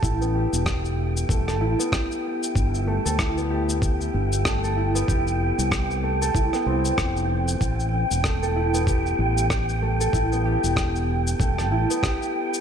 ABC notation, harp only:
X:1
M:4/4
L:1/16
Q:"Swing 16ths" 1/4=95
K:Am
V:1 name="Harp"
E B, G z4 z A, A E B, G z3 | z2 A, A E B, G z4 z A, A E B, | G z4 z A, A E B, C z4 z | z4 A, A E B, G z4 z A, A |
E B, G z4 z A, A E B, G z3 |]